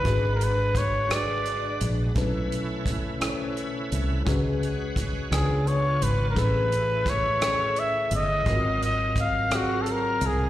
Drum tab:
HH |xxxxxx|xxxxxx|xxxxxx|xxxxxx|
SD |---r--|---r--|---r--|---r--|
BD |o-o---|o-o---|o-o---|o-o---|

HH |xxxxxx|
SD |---r--|
BD |o-o---|